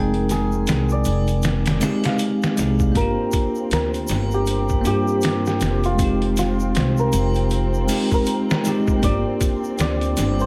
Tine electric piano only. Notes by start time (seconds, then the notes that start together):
Already playing: G#3 C4 D#4 G5
1.80 G#3 C4 D#4
1.85 G4
2.56 G#3 C4 D#4
2.60 G#4
2.92 A#3 D4
2.98 F4 G4
4.81 A#3 D4
4.87 F4 G4
5.95 G#3 C4
6.02 D#4 G4
7.87 G#3 C4 D#4
7.92 G4
8.63 G#3 C4 D#4
8.68 G4
8.99 A#3 D4
9.05 F4 G4